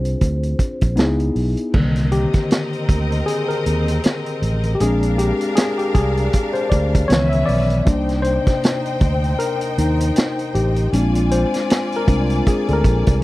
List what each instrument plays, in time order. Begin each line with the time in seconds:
Already playing: fingered electric bass C2, tine electric piano C4 D4 F4 G#4, vibraphone C5
0.05 closed hi-hat
0.21 fingered electric bass D2, kick, closed hi-hat
0.43 closed hi-hat
0.59 muted fingered electric bass stroke, kick, closed hi-hat
0.81 fingered electric bass A#1, kick, closed hi-hat
0.96 fingered electric bass C#2, tine electric piano B3 D#4 E4 G#4, snare, closed hi-hat
1.20 closed hi-hat
1.36 fingered electric bass B1, open hi-hat
1.57 closed hi-hat
1.73 fingered electric bass C2, tine electric piano D3 D#3 A#3, string section C4 A#4 D#5, kick, crash
1.96 snare, closed hi-hat
2.12 tine electric piano G4, closed hi-hat
2.33 kick, snare, closed hi-hat
2.51 snare, closed hi-hat
2.73 closed hi-hat
2.89 fingered electric bass D2, kick, closed hi-hat
3.12 closed hi-hat
3.26 tine electric piano G#4, closed hi-hat
3.48 tine electric piano A#4, closed hi-hat
3.66 fingered electric bass D#2, closed hi-hat
3.88 closed hi-hat
4.04 snare, closed hi-hat
4.26 closed hi-hat
4.42 fingered electric bass A1, closed hi-hat
4.63 closed hi-hat
4.75 tine electric piano G4
4.80 fingered electric bass A#1, tine electric piano G#3 C4 D4 G#4, string section D4 A#4 F5, closed hi-hat
5.03 closed hi-hat
5.18 tine electric piano G4, closed hi-hat
5.41 closed hi-hat
5.55 tine electric piano G#4, snare, closed hi-hat
5.78 tine electric piano G4, closed hi-hat
5.94 fingered electric bass C2, tine electric piano G#4, kick, closed hi-hat
6.17 closed hi-hat
6.33 kick, closed hi-hat
6.53 tine electric piano C5, closed hi-hat
6.70 fingered electric bass D2, tine electric piano D5, kick, closed hi-hat
6.95 kick, closed hi-hat
7.08 fingered electric bass C#2, tine electric piano D#3 E3 B3 C#5, string section C#4 B4 E5, closed hi-hat
7.12 snare
7.29 tine electric piano E5, closed hi-hat
7.46 fingered electric bass B1, tine electric piano D5, open hi-hat
7.70 closed hi-hat
7.85 fingered electric bass C2, tine electric piano C3 A#3 D4, string section D#4 C5 G5, kick, closed hi-hat
8.09 snare, closed hi-hat
8.22 tine electric piano C5, closed hi-hat
8.47 kick, snare, closed hi-hat
8.63 snare, closed hi-hat
8.86 closed hi-hat
9.01 fingered electric bass D2, kick, closed hi-hat
9.24 closed hi-hat
9.39 tine electric piano A#4, closed hi-hat
9.61 closed hi-hat
9.78 fingered electric bass D#2, tine electric piano D#4, closed hi-hat
10.00 closed hi-hat
10.16 snare, closed hi-hat
10.39 closed hi-hat
10.55 fingered electric bass A1, tine electric piano G4, closed hi-hat
10.76 closed hi-hat
10.93 fingered electric bass A#1, tine electric piano G#3 C4 D4, string section F4 D5 G#5, closed hi-hat
11.15 closed hi-hat
11.31 tine electric piano C5, closed hi-hat
11.54 snare, closed hi-hat
11.70 snare, closed hi-hat
11.92 closed hi-hat
11.96 tine electric piano A#4
12.07 fingered electric bass C2, tine electric piano G#3 C4 D4, kick, closed hi-hat
12.30 closed hi-hat
12.46 tine electric piano G#4, kick, closed hi-hat
12.68 fingered electric bass D2, tine electric piano A4, closed hi-hat
12.73 tine electric piano A#4
12.84 fingered electric bass A#1, kick, closed hi-hat
13.07 fingered electric bass C2, kick, closed hi-hat